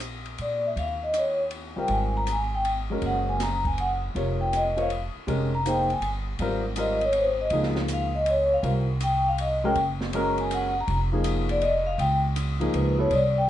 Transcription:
0.00 0.34 A#1 medium
0.00 hi-hat pedal medium
0.00 ride medium
0.26 ride soft
0.38 0.74 A#2 medium
0.38 0.64 D5 medium
0.38 ride medium
0.67 0.78 E5 medium
0.76 1.73 D#2 medium
0.76 1.02 F5 medium
0.76 kick soft
0.76 ride soft
1.03 1.15 D#5 medium
1.14 1.40 C#5 medium
1.14 hi-hat pedal soft
1.14 ride medium
1.51 ride medium
1.76 1.88 G1 medium
1.76 2.24 G3 medium
1.76 2.24 C4 medium
1.76 2.24 F4 medium
1.76 2.25 A#4 medium
1.76 1.90 G5 medium
1.88 2.97 G#1 medium
1.88 kick soft
1.88 ride medium
1.92 2.15 G#5 medium
2.17 2.28 A#5 medium
2.27 hi-hat pedal medium
2.27 ride medium
2.32 2.54 G#5 medium
2.54 2.65 G5 medium
2.65 ride medium
2.90 3.37 G#3 medium
2.90 3.38 C#4 medium
2.90 3.38 F#4 medium
2.90 3.38 A#4 medium
3.02 4.10 F#1 medium
3.02 kick soft
3.02 ride medium
3.06 3.28 F#5 medium
3.29 3.40 G#5 medium
3.40 3.65 A#5 medium
3.40 snare soft
3.40 hi-hat pedal soft
3.40 ride medium
3.65 3.78 G#5 medium
3.65 kick soft
3.65 ride soft
3.78 3.94 F#5 medium
3.78 ride medium
4.15 5.10 F1 medium
4.15 4.72 C3 medium
4.15 4.72 F4 medium
4.15 4.73 A#4 medium
4.15 4.73 C#5 medium
4.15 kick soft
4.15 ride soft
4.41 4.52 G5 medium
4.53 4.78 D#5 medium
4.53 hi-hat pedal medium
4.53 ride medium
4.77 4.88 C4 medium
4.77 4.88 F4 medium
4.77 4.88 A#4 medium
4.77 4.89 C#5 medium
4.77 ride soft
4.82 4.92 F5 medium
4.90 ride medium
5.15 muted upright bass stroke soft
5.27 5.98 F1 medium
5.27 5.49 G#3 medium
5.27 5.50 C#4 medium
5.27 5.50 G4 medium
5.27 5.50 A#4 medium
5.27 kick soft
5.27 ride medium
5.55 5.65 A#5 medium
5.66 5.87 A#3 medium
5.66 5.88 D#4 medium
5.66 5.88 G#4 medium
5.66 5.88 C5 medium
5.66 5.90 G5 medium
5.66 hi-hat pedal medium
5.66 ride medium
5.90 5.99 G#5 medium
5.90 ride soft
6.00 6.36 G1 medium
6.00 ride medium
6.39 7.47 G#1 medium
6.39 6.62 G3 medium
6.39 6.62 C4 medium
6.39 6.63 F4 medium
6.39 6.63 A#4 medium
6.39 kick soft
6.39 ride medium
6.76 6.99 G3 medium
6.76 6.99 C4 medium
6.76 7.00 F4 medium
6.76 7.00 A#4 medium
6.76 7.02 D#5 medium
6.76 hi-hat pedal medium
6.76 ride medium
7.01 7.15 C#5 medium
7.01 ride soft
7.13 ride medium
7.18 7.40 C5 medium
7.41 7.52 D#5 medium
7.50 8.59 C#2 medium
7.50 8.09 F3 medium
7.50 8.09 A#3 medium
7.50 8.09 D#4 medium
7.50 8.10 G#4 medium
7.50 kick soft
7.50 ride medium
7.63 snare soft
7.75 snare soft
7.88 hi-hat pedal medium
7.88 ride medium
7.93 8.15 F5 medium
8.15 8.26 D#5 medium
8.26 ride medium
8.30 8.52 C#5 medium
8.54 8.64 F5 medium
8.63 9.71 C2 medium
8.63 8.85 G3 medium
8.63 8.85 C4 soft
8.63 8.86 F4 medium
8.63 8.86 A#4 medium
8.63 kick soft
8.63 ride medium
9.01 9.26 G5 medium
9.01 hi-hat pedal medium
9.01 ride medium
9.28 9.39 F5 medium
9.38 9.63 D#5 medium
9.38 ride medium
9.64 9.75 G#3 medium
9.64 9.75 C#4 medium
9.64 9.75 F#4 medium
9.64 9.75 A#4 medium
9.64 9.76 G5 medium
9.75 10.83 F#1 medium
9.75 kick soft
9.75 ride medium
10.01 snare soft
10.13 10.70 G#3 medium
10.13 10.70 C#4 medium
10.13 10.71 F#4 medium
10.13 10.71 A#4 medium
10.13 10.39 A#5 medium
10.13 ride medium
10.38 10.51 G#5 medium
10.38 ride soft
10.51 10.76 F#5 medium
10.51 hi-hat pedal medium
10.51 ride medium
10.80 10.86 A#5 medium
10.88 11.95 F1 medium
10.88 kick soft
10.88 ride medium
11.12 11.59 F3 medium
11.12 11.60 A#3 medium
11.12 11.60 D#4 medium
11.12 11.60 G#4 medium
11.24 hi-hat pedal medium
11.24 ride medium
11.49 11.62 D5 medium
11.49 ride soft
11.61 11.85 D#5 medium
11.61 ride medium
11.87 11.99 F5 medium
11.98 12.69 C#2 medium
11.98 12.15 G5 medium
11.98 kick soft
11.98 ride medium
12.36 hi-hat pedal medium
12.36 ride medium
12.60 12.95 F3 medium
12.60 12.96 A#3 medium
12.60 12.96 D#4 medium
12.60 12.96 G#4 medium
12.60 ride soft
12.74 13.08 C#2 medium
12.74 12.98 B4 medium
12.74 ride medium
12.98 13.10 F#3 medium
12.98 13.10 B3 medium
12.98 13.10 E4 medium
12.98 13.10 A4 medium
12.98 13.12 C#5 medium
13.11 13.50 C2 medium
13.11 13.36 D5 medium
13.11 kick soft
13.11 ride medium
13.38 13.49 G5 medium

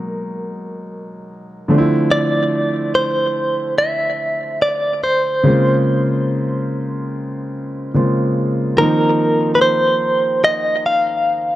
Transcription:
0.00 1.65 B2 medium
0.00 1.65 F#3 medium
0.00 1.66 G#3 medium
0.00 1.66 A#3 medium
0.00 1.66 D#4 medium
0.00 1.66 A#4 medium
1.68 4.98 D3 medium
1.68 4.99 F3 medium
1.68 4.99 A3 medium
1.68 4.99 C4 medium
1.68 1.77 D4 medium
1.78 5.03 E4 medium
2.11 2.95 D5 medium
2.95 3.74 C5 medium
3.78 4.62 E5 loud
4.62 5.03 D5 medium
5.04 7.91 C5 medium
5.43 7.90 C#3 medium
5.43 7.90 G#3 medium
5.43 7.91 A#3 medium
5.43 7.91 C4 medium
5.43 7.91 F4 medium
7.94 8.78 C#3 medium
7.94 8.78 G#3 medium
7.94 8.77 A#3 medium
7.94 8.78 C4 medium
7.94 8.78 F4 medium
8.77 11.55 D#3 medium
8.77 11.55 F3 medium
8.77 11.55 A#3 medium
8.77 11.55 C4 medium
8.77 11.55 D#4 medium
8.77 9.51 A#4 medium
9.55 9.61 B4 medium
9.62 10.44 C5 medium
10.44 10.86 D#5 loud
10.86 11.55 F5 loud

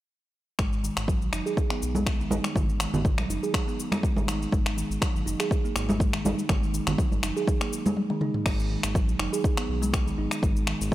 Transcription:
0.59 0.90 G#1 medium
0.59 0.72 G#3 medium
0.59 finger snap medium
0.59 kick loud
0.59 shaker soft
0.73 shaker soft
0.84 0.96 D#3 medium
0.84 shaker medium
0.97 1.23 G#1 medium
0.97 finger snap medium
0.97 shaker soft
1.08 1.21 F#3 loud
1.08 kick loud
1.08 shaker soft
1.21 1.29 B1 medium
1.21 shaker soft
1.33 1.42 F#1 medium
1.33 1.45 D#4 medium
1.33 finger snap medium
1.33 shaker medium
1.46 1.57 G#4 medium
1.46 shaker soft
1.57 kick loud
1.57 shaker soft
1.70 1.82 B3 medium
1.70 finger snap medium
1.70 shaker soft
1.82 2.25 B1 medium
1.82 shaker medium
1.95 2.06 G#3 medium
1.95 high conga medium
1.95 shaker soft
2.06 finger snap medium
2.06 kick loud
2.06 shaker soft
2.20 2.30 D#3 medium
2.20 shaker soft
2.31 2.40 G#1 loud
2.31 2.43 D#4 medium
2.31 high conga loud
2.31 shaker medium
2.44 finger snap medium
2.44 shaker soft
2.55 2.86 G#1 medium
2.55 2.69 G#3 medium
2.55 kick loud
2.55 high conga medium
2.55 low conga medium
2.55 shaker soft
2.69 shaker soft
2.80 2.93 D#3 medium
2.80 finger snap medium
2.80 shaker medium
2.93 3.19 G#1 medium
2.93 low conga medium
2.93 shaker soft
3.05 3.18 F#3 medium
3.05 kick loud
3.05 shaker soft
3.18 3.26 B1 medium
3.18 finger snap medium
3.18 high conga medium
3.18 shaker soft
3.29 3.38 F#1 medium
3.29 3.42 D#4 medium
3.29 shaker medium
3.43 3.54 G#4 medium
3.43 shaker soft
3.54 finger snap medium
3.54 kick loud
3.54 shaker medium
3.67 3.78 B3 medium
3.67 shaker soft
3.80 shaker medium
3.92 4.03 G#3 loud
3.92 finger snap medium
3.92 high conga medium
3.92 shaker soft
4.03 kick loud
4.03 shaker medium
4.16 4.46 G#1 medium
4.16 4.27 D#3 medium
4.16 high conga loud
4.16 shaker soft
4.28 4.40 D#4 medium
4.28 finger snap medium
4.28 shaker medium
4.42 shaker soft
4.52 4.83 G#1 medium
4.52 4.65 G#3 medium
4.52 kick loud
4.52 shaker soft
4.66 finger snap medium
4.66 shaker soft
4.77 4.89 D#3 medium
4.77 shaker medium
4.90 4.98 G#1 medium
4.90 shaker soft
5.02 5.14 F#3 loud
5.02 finger snap medium
5.02 kick loud
5.02 shaker medium
5.15 5.22 G#1 medium
5.15 shaker soft
5.26 5.35 F#1 medium
5.26 5.38 D#4 medium
5.26 shaker medium
5.40 5.50 G#4 medium
5.40 finger snap medium
5.40 shaker soft
5.51 kick loud
5.51 shaker medium
5.64 5.75 A#3 medium
5.64 shaker soft
5.76 6.19 G#1 medium
5.76 finger snap medium
5.76 shaker medium
5.89 6.00 G#3 loud
5.89 high conga medium
5.89 shaker soft
6.00 kick loud
6.00 shaker medium
6.13 6.24 D#3 loud
6.13 finger snap medium
6.13 shaker soft
6.24 6.33 G#1 loud
6.24 6.37 D#4 medium
6.24 high conga loud
6.24 shaker medium
6.39 shaker soft
6.49 6.80 G#1 medium
6.49 6.62 G#3 medium
6.49 finger snap medium
6.49 kick loud
6.49 high conga medium
6.49 low conga medium
6.49 shaker soft
6.63 shaker soft
6.74 6.86 D#3 medium
6.74 shaker medium
6.87 6.95 G#1 medium
6.87 finger snap medium
6.87 low conga medium
6.87 shaker soft
6.98 7.11 F#3 loud
6.98 kick loud
6.98 shaker medium
7.12 7.19 G#1 medium
7.12 high conga medium
7.12 shaker soft
7.23 7.32 F#1 loud
7.23 7.35 D#4 medium
7.23 finger snap medium
7.23 shaker medium
7.37 7.47 G#4 medium
7.37 shaker soft
7.48 kick loud
7.48 shaker medium
7.61 7.72 A#3 medium
7.61 finger snap medium
7.61 shaker soft
7.73 shaker medium
7.86 7.96 G#3 loud
7.86 high conga medium
7.86 shaker soft
7.97 high tom medium
8.10 8.20 D#3 loud
8.10 high tom medium
8.21 8.33 D#4 medium
8.21 mid tom medium
8.34 mid tom medium
8.46 8.77 G#1 loud
8.46 8.59 G#3 medium
8.46 finger snap medium
8.46 kick loud
8.46 crash medium
8.46 shaker medium
8.60 shaker soft
8.71 8.83 D#3 medium
8.83 9.10 G#1 medium
8.83 finger snap medium
8.83 shaker medium
8.95 9.08 F#3 loud
8.95 kick loud
8.95 shaker medium
9.08 9.16 B1 medium
9.08 shaker soft
9.19 9.28 F#1 medium
9.19 9.32 D#4 medium
9.19 finger snap loud
9.33 9.44 G#4 medium
9.33 shaker medium
9.44 kick loud
9.44 shaker medium
9.57 9.68 B3 medium
9.57 finger snap medium
9.57 shaker soft
9.69 10.12 B1 medium
9.82 9.93 G#3 loud
9.82 shaker medium
9.94 finger snap medium
9.94 kick loud
9.94 shaker medium
10.06 10.17 D#3 loud
10.06 shaker soft
10.18 10.27 G#1 loud
10.18 10.30 D#4 medium
10.31 finger snap medium
10.31 shaker medium
10.42 10.73 G#1 medium
10.42 10.55 G#3 medium
10.42 kick loud
10.42 shaker medium
10.56 shaker soft
10.67 10.79 D#3 medium
10.67 finger snap medium
10.81 10.95 G#1 medium
10.81 shaker medium

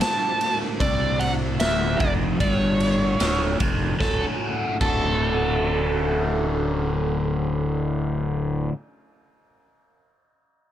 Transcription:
0.00 3.97 A3 medium
0.00 3.97 D4 medium
0.00 3.97 F#4 medium
0.00 0.57 A5 medium
0.00 snare medium
0.00 ride medium
0.41 ride soft
0.80 1.56 C2 medium
0.80 1.59 C3 medium
0.80 1.22 D5 medium
0.80 kick medium
0.80 ride medium
1.19 1.30 F#5 medium
1.19 ride soft
1.60 1.98 D1 medium
1.60 2.00 D2 medium
1.60 2.01 E5 medium
1.60 snare medium
1.60 ride medium
2.00 2.38 F1 medium
2.00 2.39 F2 medium
2.00 2.12 D5 medium
2.00 kick medium
2.00 ride soft
2.40 3.17 G1 medium
2.40 3.19 G2 medium
2.40 3.57 C#5 medium
2.40 kick medium
2.40 ride medium
2.80 ride soft
3.20 3.58 D1 medium
3.20 3.59 D2 medium
3.20 snare medium
3.20 ride medium
3.60 3.98 F1 medium
3.60 3.98 F2 medium
3.60 kick medium
3.60 ride medium
3.98 4.23 D1 medium
3.98 4.76 D2 medium
3.98 4.76 A2 medium
3.98 4.76 D3 medium
3.98 4.76 A3 medium
3.98 7.98 C#4 medium
3.98 4.76 C#4 medium
3.98 7.98 F#4 medium
3.98 4.23 A4 medium
3.98 kick medium
3.98 snare medium
4.03 4.76 F#4 medium
4.81 8.68 D1 medium
4.81 8.72 D2 medium
4.81 8.73 A2 medium
4.81 8.73 D3 medium
4.81 8.73 A3 medium
4.81 8.74 C#4 medium
4.81 8.74 F#4 medium
4.81 7.98 A4 medium
4.81 kick medium
4.81 crash medium

